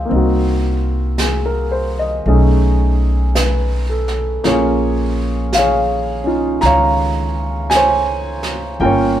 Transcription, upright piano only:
Already playing: F4 G4 D#5 F5
0.05 A#3 C4
0.12 D#4 F#4
1.19 G#4
1.46 A#4
1.72 C5
1.99 D#5
2.27 A3 C#4 D#4 G#4
3.36 B4
3.89 A4
4.44 A#3 C#4 F4 G#4 C#5
4.49 F4 G#4
5.54 C#5 F5
5.59 G#4
6.24 C#4 D#4 F4
6.61 A#5
6.66 C#5 F5
7.70 G#5
7.75 C5 C#5
8.80 A#3 C#4 F4 A#4 G5
8.85 A#4 C#5

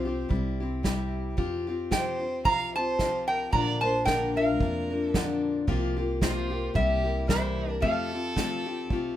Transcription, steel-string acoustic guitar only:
0.05 C4 F4 G4
0.29 G3 C4 E4 G4
0.60 C4 E4 G4
0.83 C3 G3 C4 E4 G4
1.37 F3 C4 F4 G4
1.67 C4 F4 G4
1.91 F3 C4 F4 G4
2.20 C4 F4 G4
2.45 F3 C4 F4 G4
2.75 C4 F4 G4
2.99 F3 C4 F4 G4
3.53 A#2 D3 F3 A#3 D4 A#4
3.82 F3 A#3 D4 A#4
4.06 A#2 D3 F3 A#3 D4 A#4
4.36 F3 A#3 D4 A#4
4.60 F3 A#3 D4 A#4
4.90 F3 A#3 D4 A#4
5.14 A#2 D3 F3 A#3 D4 A#4
5.67 C3 F3 A#3 F4 G4
5.97 A#3 F4 G4
6.21 C3 F3 A#3 F4 G4
6.50 A#3 F4 G4
6.74 G3 A#3 E4 G4
7.04 G3 A#3 E4 G4
7.27 C3 E3 G3 A#3 E4 G4
7.80 F3 A3 C4 F4 G4
8.12 C4 F4 G4
8.36 F3 A3 C4 F4 G4
8.66 C4 F4 G4
8.90 A3 C4 F4 G4

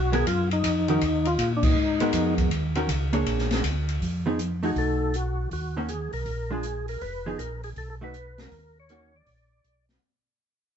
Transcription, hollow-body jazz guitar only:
0.12 G#3 B3 F#4 A#4
0.88 D#3 C#4 F#4 A#4
2.01 G#3 B3 F#4 A#4
2.76 D#3 C#4 F#4 A#4
3.13 A#3 D4 G#4 C#5
4.26 F3 B3 D#4 G#4
4.63 A3 D#4 F#4
5.77 D#3 A#3 C#4 F#4
6.51 G#3 D4 F4
7.26 F3 B3 D#4 G#4
8.01 A3 D#4 F#4
8.90 D#3 A#3 C#4 F#4

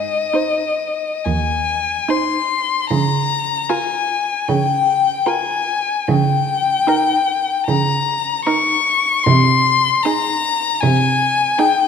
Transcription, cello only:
Already playing: G#2
1.26 D#2
2.91 C#3
4.49 C#3
6.08 C#3
7.68 C#3
9.27 C3
10.83 C3

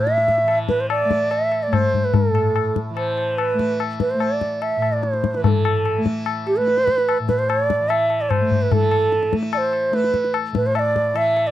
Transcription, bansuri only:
Already playing: E5
0.69 B4
0.80 C5
0.90 D5
1.31 E5
1.63 D5
1.73 C5
2.05 B4
2.15 A4
2.96 C5
3.38 B4
4.00 B4
4.11 C5
4.22 D5
4.62 E5
4.92 D5
5.03 C5
5.34 B4
5.44 A4 B4
6.47 G4
6.57 B4
7.28 B4
7.39 C5
7.49 C#5
7.64 D5
7.89 E5
8.21 D5
8.30 C5
8.62 B4
8.73 A4
9.54 C5 D5
9.95 B4
10.56 B4
10.66 C5
10.76 D5 E5
11.17 E5
11.47 D5

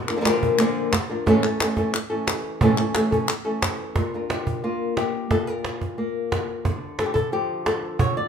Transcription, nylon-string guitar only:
0.09 F3 A#3 D4 A#4
0.16 D3 F3 A#3 D4 A#4
0.21 D3 F3 A#3 D4 A#4
0.25 A#2 D3 F3 A#3 D4 A#4
0.59 A#2 D3 F3 A#3 D4 A#4
0.93 muted nylon-string guitar stroke
1.10 F3 A#3 D4 A#4
1.26 A2 C#3 E3 A3 C#4 A4
1.43 E3 A3 C#4 A4
1.60 E3 A3 C#4 A4
1.77 E3 A3 C#4 A4
1.94 muted nylon-string guitar stroke
2.10 E3 A3 C#4 A4
2.61 A2 C#3 E3 A3 C#4 A4
2.78 E3 A3 C#4 A4
2.95 E3 A3 C#4 A4
3.11 E3 A3 C#4 A4
3.28 muted nylon-string guitar stroke
3.45 E3 A3 C#4 A4
3.96 A#2
4.14 D4 F4 A#4
4.32 G4
4.64 A#3 F4
4.97 G4
5.31 A#2 A4
5.47 A#4
5.98 A#3
6.65 D3
7.00 A4
7.06 G4
7.14 A4
7.32 F3 G4
7.66 A4
7.99 D3 C#5
8.17 D5

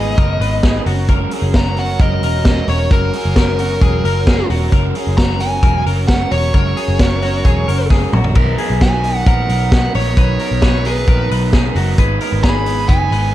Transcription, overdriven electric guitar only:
Already playing: G#3 B3 D#4 B4
0.18 G#2 D#3 G#3 B3 D#4 B4
0.41 G#3 B3 D#4 B4
0.63 G#3 B3 D#4 B4
0.85 C#4 F#4 A#4
1.09 F#3 G#3 C#4 F#4 A#4
1.31 C#4 F#4 A#4
1.54 G#3 C#4 F#4 A#4
1.76 C#4 F#4 A#4
2.00 F#3 G#3 C#4 F#4 A#4
2.22 C#4 F#4 A#4
2.46 G#3 C#4 F#4 A#4
2.68 C#4 F#4 A#4
2.91 F#3 G#3 C#4 F#4 A#4
3.13 C#4 F#4 A#4
3.36 G#3 C#4 F#4 A#4
3.59 C#4 F#4 A#4
3.81 F#3 G#3 C#4 F#4 A#4
4.04 C#4 F#4 A#4
4.26 G#3 C#4 F#4 A#4
4.50 C#4 F#4 A#4
4.72 F#3 G#3 C#4 F#4 A#4
4.95 C#4 F#4 A#4
5.17 G#3 C#4 F#4 A#4
5.39 C#4 F#4 A#4
5.62 F#3 G#3 C#4 F#4 A#4
5.85 C#4 F#4 A#4
6.07 G#3 C#4 F#4 A#4
6.31 C#4 F#4 A#4
6.54 F#3 G#3 C#4 F#4 A#4
6.77 C#4 F#4 A#4
7.00 G#3 C#4 F#4 A#4
7.23 C#4 F#4 A#4
7.45 F#3 G#3 C#4 F#4 A#4
7.67 C#4 F#4 A#4
7.90 G#3 C#4 F#4 A#4
8.12 C#4 F#4 A#4
8.35 B2 D#3 F#3 B3 D#4 A#4
8.58 F#3 B3 D#4 A#4
8.81 F#3 B3 D#4 A#4
9.03 F#3 B3 D#4 A#4
9.26 B2 D#3 F#3 B3 D#4 A#4
9.49 F#3 B3 D#4 A#4
9.71 F#3 B3 D#4 A#4
9.94 F#3 B3 D#4 A#4
10.17 B2 D#3 F#3 B3 D#4 A#4
10.40 F#3 B3 D#4 A#4
10.63 F#3 B3 D#4 A#4
10.86 F#3 B3 D#4 A#4
11.09 B2 D#3 F#3 B3 D#4 A#4
11.30 F#3 B3 D#4 A#4
11.54 F#3 B3 D#4 A#4
11.76 F#3 B3 D#4 A#4
11.99 G#2 D#3 G#3 B3 D#4 B4
12.22 G#3 B3 D#4 B4
12.44 G#3 B3 D#4 B4
12.66 G#3 B3 D#4 B4
12.89 G#2 D#3 G#3 B3 D#4 B4
13.11 G#3 B3 D#4 B4

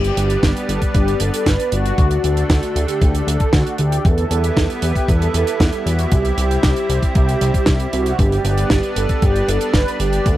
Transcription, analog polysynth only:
Already playing: G4
0.69 A4
0.95 G4
1.20 A4
1.46 B4
1.72 F#4
2.76 G4
3.27 A4
3.54 F#4
3.79 G4
4.05 A4
4.83 G4
5.09 A4
5.86 F#4
6.12 G4
7.16 G4
7.93 F#4
8.19 G4
8.97 A4
9.22 G4
9.48 A4
9.74 B4
10.00 G4
10.26 A4

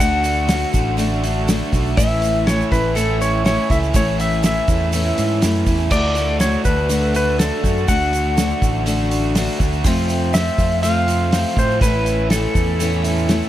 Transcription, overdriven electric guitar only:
0.00 D3 A3 D4 F#4
0.24 A3 D4 F#4
0.49 D3 A3 D4 F#4
0.98 D3 A3 D4 F#4
1.24 A3 D4 F#4
1.48 D3 A3 D4 F#4
1.73 A3 D4 F#4
1.97 A2 E3 A3 C#4 E4
2.22 A3 C#4 E4
2.46 E3 A3 C#4 E4
2.95 A2 E3 A3 C#4 E4
3.20 A3 C#4 E4
3.45 E3 A3 C#4 E4
3.70 A3 C#4 E4
3.94 A2 E3 A3 C#4 E4
4.18 A3 C#4 E4
4.43 E3 A3 C#4 E4
4.93 A2 E3 A3 C#4 E4
5.17 A3 C#4 E4
5.42 E3 A3 C#4 E4
5.66 A3 C#4 E4
5.90 D3 A3 D4 F#4
6.15 A3 D4 F#4
6.40 D3 A3 D4 F#4
6.89 D3 A3 D4 F#4
7.14 A3 D4 F#4
7.38 D3 A3 D4 F#4
7.62 A3 D4 F#4
7.86 D3 A3 D4 F#4
8.11 A3 D4 F#4
8.36 D3 A3 D4 F#4
8.85 D3 A3 D4 F#4
9.10 A3 D4 F#4
9.34 D3 A3 D4 F#4
9.59 A3 D4 F#4
9.84 F2 C3 F3 A3 C4 F4
10.08 F3 A3 C4 F4
10.33 F3 A3 C4 F4
10.82 F2 C3 F3 A3 C4 F4
11.07 F3 A3 C4 F4
11.31 F3 A3 C4 F4
11.55 F3 A3 C4 F4
11.80 A2 E3 A3 C#4 E4
12.05 A3 C#4 E4
12.30 E3 A3 C#4 E4
12.79 A2 E3 A3 C#4 E4
13.04 A3 C#4 E4
13.29 E3 A3 C#4 E4

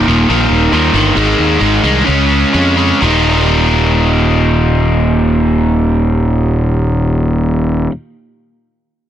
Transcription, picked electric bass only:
0.07 D#1
0.29 A#1
0.50 D#1
0.72 D#2
0.94 G1
1.16 G#1
1.39 D#2
1.61 G#1
1.83 C2
2.08 C#2
2.54 F2
3.02 D#1

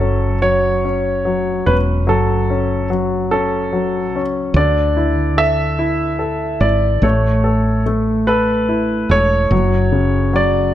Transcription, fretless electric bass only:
Already playing: F#1
1.67 E1
2.07 F#1
4.13 C#2
4.54 D2
6.60 G#1
7.02 A1
9.09 E1
9.51 F#1

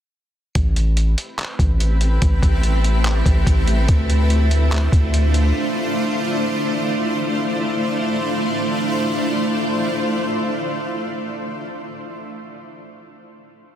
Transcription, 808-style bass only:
0.55 A1
1.59 A1
2.22 A1
2.43 A1
3.26 A1
3.47 A1
3.89 D2
4.92 D2

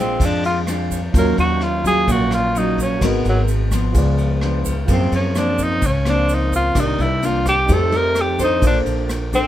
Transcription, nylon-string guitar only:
Already playing: A#2 G#3 D4 F4
0.21 F3
0.68 G#3 D4 F4
1.15 D#3 F#3 C#4 F4
1.84 F#3 C#4 F4
2.08 A#2
2.55 F#3 C#4 F4
3.02 G#3 B3 F#4 A#4
3.72 F3 B3
3.96 C#3
4.43 F3 B3 D4
4.89 F#2 F3 A#3 C4
5.35 F3 A#3 C4
5.83 C#3
6.06 F3 A#3 C4
6.76 C3 D#3 A#3 D4
7.22 D#3 A#3 D4
7.68 F3 A3 D#4 G4
7.92 A3 D#4 G4
8.39 D4 A4 C5
8.63 A#3
9.33 D4 A4 C5

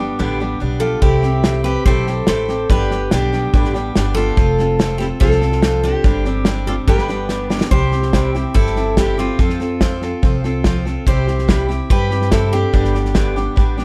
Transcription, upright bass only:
0.20 A1
0.61 B1
1.02 C2
1.86 B1
2.27 A1
2.70 G1
3.12 B1
3.54 A1
3.96 G1
4.38 F1
5.21 C2
6.04 G1
6.87 G1
7.71 C2
8.55 G1
9.39 F2
10.23 C2
11.07 C2
11.90 G2
12.74 G1
13.57 A1

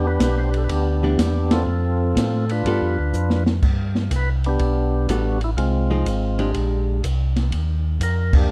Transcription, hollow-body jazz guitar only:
1.03 E3 B3 D4 G4
2.66 G3 B3 F4 A4
5.10 G3 B3 F#4 A4
5.90 F3 C4 D#4 G#4
6.39 G#3 D4 G4

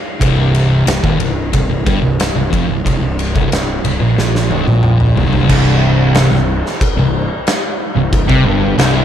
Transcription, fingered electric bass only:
0.21 C1
0.87 C1
1.04 D#1
1.20 C1
1.53 C1
1.69 C1
1.87 G1
2.02 C1
2.35 C1
2.53 F1
2.69 C1
2.86 C1
3.01 C1
3.36 C1
3.51 C1
3.84 C1
4.01 A#1
4.18 A#1
4.52 C1
4.67 A#1
5.16 C1
5.50 C1
6.31 C1
6.97 C1
7.96 C1
8.29 C2
8.45 G1
8.78 C1

